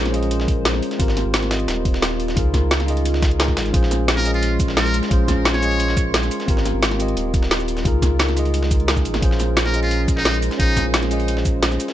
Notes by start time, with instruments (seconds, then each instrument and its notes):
Already playing: sub bass A#1, ambient pad G#3 C#4 A#4 C5, tine electric piano C#4 F4 G#4 C5 D#5
0.05 snare, closed hi-hat
0.12 tine electric piano C#4 F4 G#4, closed hi-hat
0.16 tine electric piano D#5
0.23 closed hi-hat
0.31 closed hi-hat
0.40 snare
0.48 kick, closed hi-hat
0.65 snare, closed hi-hat
0.74 snare
0.82 closed hi-hat
0.91 snare, closed hi-hat
0.98 sub bass G#1, ambient pad G3 F4, tine electric piano C4 F4 G4, kick, closed hi-hat
1.02 tine electric piano A#4
1.08 snare
1.17 snare, closed hi-hat
1.25 sub bass G#1
1.34 snare, closed hi-hat
1.43 snare, closed hi-hat
1.49 tine electric piano C4 F4 G4, snare, closed hi-hat
1.53 tine electric piano D#5
1.60 closed hi-hat
1.68 sub bass D#1, snare, closed hi-hat
1.85 kick, closed hi-hat
1.94 snare
2.02 snare, closed hi-hat
2.20 closed hi-hat
2.28 snare, closed hi-hat
2.35 sub bass C#2, ambient pad G#3 C#4, tine electric piano D#4 F4 G#4, kick, closed hi-hat
2.39 tine electric piano A#4
2.54 kick, snare, closed hi-hat
2.62 sub bass C#2
2.71 snare, closed hi-hat
2.80 snare, closed hi-hat
2.86 tine electric piano D#4 F4 G#4, closed hi-hat
2.90 tine electric piano D#5
2.97 closed hi-hat
3.05 closed hi-hat
3.14 snare
3.22 kick, snare, closed hi-hat
3.31 closed hi-hat
3.39 tine electric piano D#4 F4 G#4 A#4, snare, closed hi-hat
3.48 kick, snare
3.57 sub bass G#1, snare, closed hi-hat
3.66 closed hi-hat
3.72 sub bass A#1, tine electric piano C#4 F4 G#4, ambient pad C#4 A#4 C6, kick, closed hi-hat
3.76 tine electric piano C5
3.83 snare
3.91 snare, closed hi-hat, shaker
4.08 snare, closed hi-hat
4.17 muted trumpet A#4, snare, closed hi-hat
4.23 tine electric piano C#4 F4 G#4, closed hi-hat, shaker
4.27 tine electric piano D#5
4.34 muted trumpet F4, closed hi-hat
4.43 closed hi-hat
4.60 kick, closed hi-hat, shaker
4.68 snare
4.77 muted trumpet A#4, snare, closed hi-hat
4.86 shaker
4.94 closed hi-hat, shaker
5.03 snare, closed hi-hat
5.09 sub bass A#1, tine electric piano C#4 F4 G#4, kick, closed hi-hat
5.13 tine electric piano C5
5.28 kick, snare, closed hi-hat, shaker
5.37 sub bass A#1
5.45 snare, closed hi-hat
5.54 muted trumpet C#5, snare, closed hi-hat
5.61 tine electric piano C#4 F4 G#4, closed hi-hat, shaker
5.65 tine electric piano D#5
5.71 closed hi-hat
5.80 closed hi-hat
5.88 snare
5.97 kick, closed hi-hat, shaker
6.14 snare, closed hi-hat
6.23 snare, shaker
6.31 closed hi-hat, shaker
6.40 snare, closed hi-hat
6.46 sub bass G#1, ambient pad G3 F4, tine electric piano C4 F4 G4, kick, closed hi-hat
6.50 tine electric piano A#4
6.57 snare
6.65 snare, closed hi-hat, shaker
6.74 sub bass G#1
6.83 snare, closed hi-hat
6.91 snare, closed hi-hat
6.98 tine electric piano C4 F4 G4, closed hi-hat, shaker
7.02 tine electric piano D#5
7.08 closed hi-hat
7.17 sub bass D#1, closed hi-hat
7.34 kick, closed hi-hat, shaker
7.43 snare
7.51 snare, closed hi-hat
7.60 shaker
7.68 closed hi-hat, shaker
7.77 snare, closed hi-hat
7.83 sub bass C#2, ambient pad G#3 C#4, tine electric piano D#4 F4 G#4, kick, closed hi-hat
7.88 tine electric piano A#4
8.02 kick, snare, closed hi-hat, shaker
8.11 sub bass C#2
8.19 snare, closed hi-hat
8.28 snare, closed hi-hat
8.35 tine electric piano D#4 F4 G#4, closed hi-hat, shaker
8.39 tine electric piano D#5
8.45 closed hi-hat
8.54 closed hi-hat
8.63 snare
8.71 kick, closed hi-hat, shaker
8.80 closed hi-hat
8.87 tine electric piano D#4 F4 G#4 A#4, snare, closed hi-hat
8.97 kick, snare, shaker
9.05 sub bass G#1, closed hi-hat, shaker
9.14 snare, closed hi-hat
9.21 sub bass A#1, ambient pad G#3 C5, tine electric piano C#4 F4 G#4, kick, closed hi-hat
9.25 tine electric piano C5
9.31 snare
9.40 snare, closed hi-hat, shaker
9.57 snare, closed hi-hat
9.65 muted trumpet A#4, snare, closed hi-hat
9.72 tine electric piano C#4 F4 G#4, closed hi-hat, shaker
9.76 tine electric piano D#5
9.83 muted trumpet F4, closed hi-hat
9.91 closed hi-hat
10.08 kick, closed hi-hat, shaker
10.17 muted trumpet D#4, snare
10.25 snare, closed hi-hat
10.34 shaker
10.42 closed hi-hat, shaker
10.51 snare, closed hi-hat
10.57 sub bass A#1, tine electric piano C#4 F4 G#4, muted trumpet D#4, kick, closed hi-hat
10.62 tine electric piano C5
10.77 kick, snare, closed hi-hat, shaker
10.85 sub bass A#1
10.94 snare, closed hi-hat
11.03 snare, closed hi-hat
11.09 tine electric piano C#4 F4 G#4, closed hi-hat, shaker
11.13 tine electric piano D#5
11.20 closed hi-hat
11.28 closed hi-hat
11.37 snare
11.45 kick, closed hi-hat, shaker
11.63 snare, closed hi-hat
11.71 snare, shaker
11.80 closed hi-hat, shaker
11.88 snare, closed hi-hat